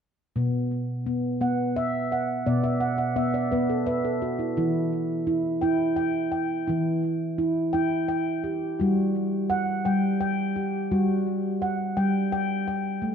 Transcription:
0.36 1.29 B2 medium
0.36 1.05 B3 medium
1.06 1.40 B3 medium
1.41 2.34 B3 medium
1.41 2.11 F#5 medium
1.76 2.47 E5 medium
2.12 2.79 F#5 soft
2.46 3.40 B2 medium
2.46 3.15 B3 medium
2.46 2.79 D5 medium
2.64 2.97 E5 medium
2.80 2.97 F#5 medium
2.98 3.32 F#5 soft
3.16 3.51 B3 medium
3.16 3.49 E5 medium
3.34 3.67 D5 medium
3.52 4.46 B3 medium
3.52 3.85 B4 medium
3.70 4.02 A4 soft
3.86 4.20 B4 medium
3.86 4.58 E5 medium
4.05 4.38 A4 medium
4.22 4.55 F#4 soft
4.39 4.56 E4 medium
4.57 5.51 E3 medium
4.57 5.26 E4 medium
5.27 5.61 E4 medium
5.61 6.56 E4 medium
5.61 5.95 G5 medium
5.96 6.31 G5 medium
6.32 7.38 G5 soft
6.68 7.62 E3 medium
6.68 7.37 E4 medium
7.38 7.73 E4 medium
7.73 8.68 E4 medium
7.73 8.07 G5 medium
8.08 8.80 G5 medium
8.44 9.15 G4 soft
8.80 9.74 G3 medium
8.80 9.50 F#4 medium
9.50 10.21 F#5 medium
9.85 10.79 G3 medium
9.85 10.19 G5 medium
10.21 10.91 G5 medium
10.56 11.62 G4 soft
10.92 11.85 G3 medium
10.92 11.62 F#4 medium
11.62 12.32 F#5 medium
11.97 12.91 G3 medium
11.97 12.31 G5 medium
12.32 12.66 G5 medium
12.68 13.15 G5 medium
13.02 13.15 A3 medium

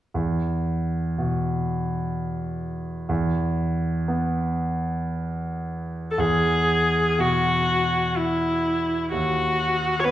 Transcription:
0.14 3.05 E2 soft
1.18 4.27 B2 soft
3.09 6.15 E2 soft
4.08 6.19 B3 soft
6.11 6.21 A4 soft
6.18 9.07 E2 soft
6.18 7.21 G#4 medium
7.18 9.11 B2 soft
7.18 8.17 F#4 medium
8.16 9.11 E4 soft
9.12 10.11 D#2 soft
9.12 10.01 F#4 medium
9.99 10.06 C#5 soft
10.04 10.11 B3 soft
10.04 10.11 F#4 soft
10.04 10.11 B4 medium

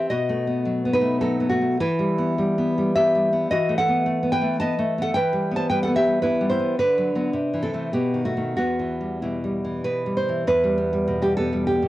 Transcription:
0.00 0.10 C4 soft
0.10 1.78 B2 medium
0.10 0.90 F#4 medium
0.10 0.90 D#5 medium
0.29 1.00 A3 soft
0.47 0.84 B3 soft
0.65 1.20 F#3 soft
0.85 1.39 B3 soft
0.93 1.20 D#4 medium
0.93 1.20 B4 medium
1.01 1.50 A3 soft
1.21 1.80 F#3 soft
1.21 1.50 D#4 medium
1.21 1.49 A4 medium
1.40 1.80 B3 soft
1.50 1.60 A3 medium
1.50 1.79 F#4 medium
1.62 1.81 A3 soft
1.80 3.45 E3 medium
1.80 2.91 E4 medium
1.80 2.91 B4 medium
1.99 2.37 G3 medium
2.18 2.57 B3 soft
2.38 2.77 G3 soft
2.58 2.95 B3 medium
2.78 3.14 G3 medium
2.96 3.32 B3 soft
2.96 3.47 G4 medium
2.96 3.48 E5 medium
3.15 3.51 G3 medium
3.33 3.50 B3 soft
3.51 5.10 E3 medium
3.51 3.76 F#4 medium
3.51 3.76 D#5 medium
3.69 4.05 A3 medium
3.78 4.29 A4 medium
3.78 4.29 F#5 medium
3.88 4.22 B3 medium
4.06 4.40 A3 medium
4.23 4.60 B3 medium
4.32 4.58 B4 medium
4.32 4.58 G5 medium
4.42 4.61 A3 medium
4.60 4.78 B3 medium
4.60 4.98 D#5 medium
4.60 4.99 A5 medium
4.79 5.14 A3 medium
4.98 5.15 B3 medium
4.98 5.14 F#5 medium
5.03 5.14 A4 medium
5.14 6.74 E3 medium
5.14 5.52 B4 medium
5.14 5.52 G5 medium
5.33 5.69 G3 medium
5.51 5.86 B3 soft
5.56 5.68 C5 medium
5.56 5.68 A5 medium
5.70 6.05 G3 soft
5.70 5.81 B4 medium
5.70 5.82 G5 medium
5.83 5.95 A4 medium
5.83 5.95 F#5 medium
5.87 6.21 B3 medium
5.96 6.20 G4 medium
5.96 6.21 E5 medium
6.06 6.39 G3 medium
6.22 6.58 B3 soft
6.22 6.48 E4 medium
6.22 6.48 B4 medium
6.41 6.77 G3 soft
6.49 6.76 E4 medium
6.49 6.76 C5 medium
6.59 6.77 B3 soft
6.79 7.33 D3 medium
6.79 7.60 D4 medium
6.79 7.60 B4 medium
6.98 7.14 F#3 soft
7.15 7.32 F#3 soft
7.15 7.32 B3 soft
7.33 7.91 C3 medium
7.54 7.72 E3 soft
7.63 7.91 C4 medium
7.63 7.92 A4 medium
7.74 7.91 E3 soft
7.74 7.92 A3 soft
7.93 8.55 B2 medium
7.93 8.22 B3 soft
7.93 8.23 G4 medium
8.14 8.36 D#3 soft
8.25 8.36 A3 soft
8.25 8.55 F#4 medium
8.37 8.55 D#3 soft
8.37 8.55 A3 soft
8.57 9.84 E2 soft
8.57 9.19 B3 medium
8.57 9.19 F#4 medium
8.79 9.63 E3 soft
9.01 9.22 G3 soft
9.22 9.84 B2 soft
9.22 9.43 G3 soft
9.22 9.84 E4 soft
9.44 10.05 G3 soft
9.65 10.27 E3 soft
9.84 10.47 B2 soft
9.84 10.16 B4 medium
10.06 10.48 G3 soft
10.17 10.47 C5 medium
10.29 10.49 E3 soft
10.47 11.88 E2 medium
10.47 11.18 B4 medium
10.64 10.92 G3 soft
10.78 11.37 B3 soft
10.93 11.21 G3 soft
11.08 11.81 B2 soft
11.22 11.52 G3 soft
11.22 11.36 G4 medium
11.37 11.88 B3 soft
11.37 11.64 A4 medium
11.53 11.88 G3 medium
11.67 11.88 G4 medium
11.82 11.88 B2 soft

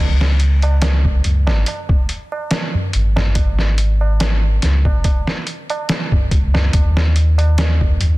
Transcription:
0.00 1.21 C#2 loud
0.20 snare soft
0.20 tabla na soft
0.40 closed hi-hat medium
0.62 closed hi-hat soft
0.62 tabla na medium
0.82 snare loud
0.82 closed hi-hat medium
0.82 tabla na medium
1.05 kick medium
1.05 tabla na soft
1.24 1.49 C#2 medium
1.24 closed hi-hat medium
1.24 tabla ge medium
1.47 1.65 G#1 medium
1.47 snare soft
1.47 tabla na medium
1.66 closed hi-hat medium
1.66 tabla na medium
1.89 kick medium
1.89 tabla na soft
2.09 closed hi-hat medium
2.32 tabla na medium
2.51 snare loud
2.51 closed hi-hat medium
2.51 tabla na medium
2.74 tabla na soft
2.74 tabla ge medium
2.93 4.59 G#1 medium
2.93 closed hi-hat medium
3.16 snare medium
3.16 tabla na medium
3.16 tabla ge medium
3.35 kick loud
3.35 closed hi-hat medium
3.35 tabla na medium
3.59 snare soft
3.59 tabla na soft
3.78 closed hi-hat medium
4.01 tabla na medium
4.20 snare loud
4.20 closed hi-hat medium
4.20 tabla na medium
4.43 tabla na soft
4.62 4.87 C#2 medium
4.62 snare soft
4.62 closed hi-hat medium
4.62 tabla ge medium
4.85 5.03 G#1 medium
4.85 kick medium
4.85 tabla na medium
5.04 kick medium
5.04 closed hi-hat medium
5.04 tabla na medium
5.27 snare soft
5.27 tabla na soft
5.47 closed hi-hat medium
5.70 closed hi-hat soft
5.70 tabla na medium
5.89 snare loud
5.89 closed hi-hat medium
5.89 tabla na medium
6.12 kick medium
6.12 tabla na soft
6.12 tabla ge medium
6.31 6.69 C#2 medium
6.31 kick medium
6.31 closed hi-hat medium
6.54 snare medium
6.54 tabla na medium
6.54 tabla ge medium
6.73 7.97 D#2 medium
6.73 kick loud
6.73 closed hi-hat medium
6.73 tabla na medium
6.97 snare soft
6.97 tabla na soft
7.16 closed hi-hat medium
7.38 closed hi-hat soft
7.38 tabla na medium
7.58 snare loud
7.58 closed hi-hat medium
7.58 tabla na medium
7.81 kick medium
7.81 tabla na soft
8.00 8.18 D#2 medium
8.00 closed hi-hat medium
8.00 tabla ge medium

